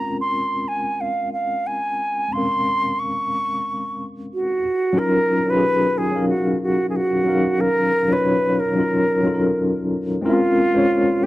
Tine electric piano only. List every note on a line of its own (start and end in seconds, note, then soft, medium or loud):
0.00 2.26 G#3 soft
0.00 2.27 C4 soft
0.00 2.28 C#4 soft
0.00 2.29 F4 soft
0.00 2.31 A#4 medium
2.28 4.57 G#3 soft
2.28 4.58 C4 soft
2.33 4.59 C#4 soft
2.33 4.60 F5 soft
2.38 4.61 A#4 medium
4.93 5.37 F#3 medium
4.93 5.37 C#4 medium
4.93 5.38 D#4 medium
4.93 5.39 F4 medium
4.98 5.39 A#4 medium
5.45 6.00 F#3 medium
5.45 6.00 C#4 medium
5.45 6.01 D#4 medium
5.45 6.02 F4 medium
5.50 5.54 G4 medium
5.57 6.06 G#4 medium
6.11 7.09 F#3 medium
6.11 7.09 C#4 medium
6.11 7.10 D#4 medium
6.16 7.11 A#4 medium
6.16 7.11 F5 medium
7.25 7.95 F#3 medium
7.25 7.96 C#4 medium
7.25 7.96 D#4 medium
7.25 7.97 F5 medium
7.30 7.98 A#4 medium
8.08 8.63 F#3 medium
8.08 8.64 C#4 medium
8.08 8.64 D#4 medium
8.08 8.65 F4 medium
8.13 8.66 C#5 medium
8.75 9.16 F#3 medium
8.75 9.17 C#4 medium
8.75 9.18 D#4 medium
8.75 9.18 F4 medium
8.80 9.19 A#4 medium
9.23 10.09 F#3 medium
9.23 10.09 C#4 medium
9.23 10.10 D#4 medium
9.23 10.11 F4 medium
9.27 9.33 A4 medium
9.34 10.14 A#4 medium
10.21 10.65 G#3 medium
10.21 10.65 C4 medium
10.21 10.66 C#4 medium
10.21 10.67 F4 medium
10.26 10.67 A#4 loud
10.73 11.26 G#3 medium
10.73 11.26 C#4 medium
10.73 11.26 F4 medium
10.73 11.26 C5 medium
10.78 11.26 C#5 medium